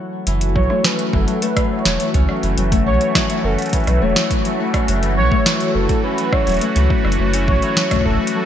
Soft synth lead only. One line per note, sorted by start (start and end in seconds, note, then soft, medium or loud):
0.56 0.86 C#5 loud
0.84 1.15 B4 loud
1.13 1.44 A4 medium
1.42 1.73 B4 loud
1.71 2.29 C#5 loud
2.87 3.46 C#5 loud
3.44 3.74 A4 loud
3.73 4.03 B4 loud
4.02 4.60 C#5 loud
5.17 5.71 C#5 loud
5.75 6.02 A4 medium
6.04 6.34 B4 loud
6.33 6.90 C#5 loud
7.48 8.02 C#5 loud
8.06 8.19 A4 medium
8.35 8.45 A4 medium